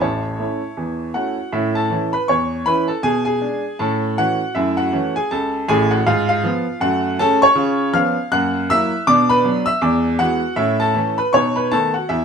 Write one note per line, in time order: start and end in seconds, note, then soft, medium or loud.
0.01 0.33 A1 medium
0.01 0.34 A2 medium
0.01 1.34 C#5 medium
0.01 1.34 E5 soft
0.01 1.38 A5 medium
0.39 0.60 A3 soft
0.39 0.61 C#4 soft
0.39 0.61 E4 soft
0.77 1.09 E2 soft
0.77 1.10 E3 soft
1.14 1.35 A3 soft
1.14 1.36 C#4 soft
1.14 1.36 E4 soft
1.14 1.51 F#4 medium
1.14 1.53 F#5 medium
1.53 1.85 A2 medium
1.53 1.75 C#4 soft
1.53 1.74 E4 medium
1.53 1.75 E5 medium
1.75 2.11 A4 medium
1.75 2.13 A5 medium
1.90 2.11 E3 medium
1.90 2.12 C#4 soft
1.90 2.12 E4 soft
2.13 2.28 B4 medium
2.13 2.28 B5 medium
2.28 2.61 E2 medium
2.28 2.64 C#5 medium
2.28 2.66 C#6 loud
2.66 2.87 E3 medium
2.66 2.88 C#4 medium
2.66 2.88 E4 medium
2.66 2.88 B4 medium
2.66 2.89 B5 loud
2.88 3.03 A4 medium
2.88 3.04 A5 medium
3.03 3.36 B2 medium
3.03 3.25 G#4 medium
3.03 3.23 G#5 loud
3.25 3.76 G#4 medium
3.25 3.79 G#5 medium
3.41 3.62 G#3 soft
3.41 3.63 D4 soft
3.79 4.12 A2 medium
3.79 4.02 C#4 soft
3.79 4.16 A4 medium
3.79 4.17 A5 medium
4.18 4.39 E3 medium
4.18 4.39 A3 soft
4.18 4.39 C#4 soft
4.18 4.54 F#4 medium
4.18 4.56 F#5 loud
4.55 4.88 F#2 medium
4.55 4.77 A3 medium
4.55 4.77 E4 medium
4.55 4.78 E5 medium
4.77 5.14 F#4 medium
4.77 5.15 F#5 medium
4.93 5.14 E3 medium
4.93 5.14 A3 medium
4.93 5.14 C#4 medium
5.16 5.31 G#4 medium
5.16 5.31 G#5 medium
5.31 5.63 C#2 medium
5.31 5.67 A4 medium
5.31 5.69 A5 medium
5.68 5.99 A1 medium
5.68 5.99 A2 loud
5.68 5.90 G#4 medium
5.68 5.91 G#5 loud
5.91 6.06 F#4 medium
5.91 6.06 F#5 medium
6.07 6.39 G#2 loud
6.07 6.28 F4 medium
6.07 6.27 F5 loud
6.29 6.79 F4 medium
6.29 6.82 F5 loud
6.43 6.64 F3 medium
6.43 6.65 B3 medium
6.80 7.13 F#2 medium
6.80 7.03 A3 medium
6.80 7.17 F#4 medium
6.80 7.19 F#5 loud
7.19 7.40 C#3 medium
7.19 7.41 A3 medium
7.19 7.41 C#4 medium
7.19 7.41 A4 loud
7.19 7.42 A5 loud
7.42 7.92 C#5 medium
7.42 7.95 C#6 loud
7.55 7.88 C#3 loud
7.55 7.78 F4 medium
7.93 8.14 F3 medium
7.93 8.15 B3 medium
7.93 8.15 C#4 medium
7.93 8.30 F5 medium
7.93 8.32 F6 loud
8.32 8.64 F#2 medium
8.32 8.54 A#3 medium
8.32 8.68 F#5 medium
8.32 8.70 F#6 loud
8.70 8.91 F#3 medium
8.70 8.91 A#3 medium
8.70 8.92 E4 medium
8.70 9.06 E5 loud
8.70 9.08 E6 loud
9.07 9.40 B2 loud
9.07 9.30 D4 medium
9.07 9.29 D5 medium
9.07 9.30 D6 loud
9.29 9.66 B4 medium
9.29 9.68 B5 loud
9.44 9.65 F#3 medium
9.44 9.66 B3 medium
9.44 9.66 D4 medium
9.66 9.82 E5 medium
9.66 9.82 E6 loud
9.81 10.14 E2 loud
9.81 10.04 G#3 medium
9.81 10.18 D5 medium
9.81 10.20 D6 medium
10.19 10.40 E3 medium
10.19 10.41 G#3 medium
10.19 10.41 B3 medium
10.19 10.56 F#4 medium
10.19 10.58 F#5 loud
10.56 10.89 A2 medium
10.56 10.79 C#4 medium
10.56 10.79 E4 medium
10.56 10.80 E5 medium
10.80 11.16 A4 medium
10.80 11.18 A5 loud
10.95 11.16 E3 soft
10.95 11.16 A3 medium
10.95 11.17 C#4 medium
11.18 11.33 B4 medium
11.18 11.34 B5 medium
11.33 11.66 B2 medium
11.33 11.55 D#4 medium
11.33 11.55 C#5 medium
11.33 11.56 C#6 loud
11.56 11.71 B4 medium
11.56 11.71 B5 medium
11.72 11.92 D#3 medium
11.72 11.93 A3 medium
11.72 11.93 B3 medium
11.72 11.93 A4 medium
11.72 11.94 A5 loud
11.94 12.09 F#4 medium
11.94 12.09 F#5 medium
12.09 12.25 E2 medium
12.09 12.25 E4 medium
12.09 12.25 E5 medium